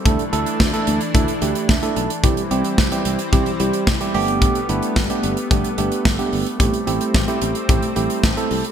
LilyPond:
<<
  \new Staff \with { instrumentName = "Tine electric piano" } { \time 4/4 \key a \minor \tempo 4 = 110 << { r2. e''8 a''8 | r1 | r1 | r1 | } \\ { <a d' e' a'>16 r16 <a d' e' a'>8 r16 <a d' e' a'>8 r16 <a d' e' a'>16 r16 <a d' e' g'>8 r16 <a d' e' a'>8 r16 | <g c' e' g'>16 r16 <g c' e' g'>8 r16 <g c' e' g'>8 r16 <g c' e' g'>16 r16 <g c' e' g'>8 r16 <g c' e' g'>16 <a b d' g'>8~ | <a b d' g'>16 r16 <a b d' e'>8 r16 <a b d' g'>8 r16 <a b d' g'>16 r16 <a b d' g'>8 r16 <a b d' g'>8 r16 | <a c' e' g'>16 r16 <a c' e' g'>8 r16 <a c' e' g'>8 r16 <a c' e' g'>16 r16 <a c' e' g'>8 r16 <a c' e' a'>8 r16 | } >> }
  \new Staff \with { instrumentName = "Analog synth pad" } { \time 4/4 \key a \minor << { <e d'>1 | <e c'>2.~ <e c'>8 b8~ | b1 | c'1 | } \\ { a1 | g2.~ g8 a8~ | a1~ | a1 | } >> }
  \new Staff \with { instrumentName = "Fretless electric bass" } { \clef bass \time 4/4 \key a \minor d,16 r16 d,16 r16 d,16 r16 d,16 r16 d,16 r16 d,16 r16 d,16 r16 b,,16 r16 | c,16 r16 c,16 r16 c,16 r16 c,16 r16 c,16 r16 c,16 r16 c,16 r16 g,,8~ | g,,16 r16 g,,16 r16 g,,16 r16 g,,16 r16 g,,16 r16 g,,16 r16 g,,16 r16 g,,16 r16 | a,,16 r16 a,,16 r16 a,,16 r16 a,,16 r16 a,,16 r16 a,,16 r16 a,,16 r16 c,16 r16 | }
  \new DrumStaff \with { instrumentName = "Drums" } \drummode { \time 4/4 <hh bd>16 hh16 hh16 hh16 <bd sn>16 hh16 hh16 hh16 <hh bd>16 hh16 hh16 hh16 <bd sn>16 hh16 hh16 hh16 | <hh bd>16 hh16 hh16 hh16 <bd sn>16 hh16 hh16 hh16 <hh bd>16 hh16 hh16 hh16 <bd sn>16 hh16 hho16 hh16 | <hh bd>16 hh16 hh16 hh16 <bd sn>16 hh16 hh16 hh16 <hh bd>16 hh16 hh16 hh16 <bd sn>16 hh16 hho16 hh16 | <hh bd>16 hh16 hh16 hh16 <bd sn>16 hh16 hh16 hh16 <hh bd>16 hh16 hh16 hh16 <bd sn>16 hh16 hho16 hh16 | }
>>